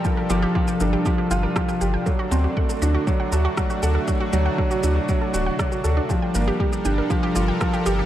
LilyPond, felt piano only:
\new Staff \with { instrumentName = "Felt piano" } { \clef bass \time 4/4 \key g \minor \tempo 4 = 119 f8 f8 f8 d'8 f8 f'8 f8 g'8 | fis8 c'8 a8 d'8 fis8 fis'8 fis8 a'8 | fis8 fis8 fis8 d'8 fis8 fis'8 fis8 a'8 | f8 bes8 g8 d'8 f8 f'8 f8 g'8 | }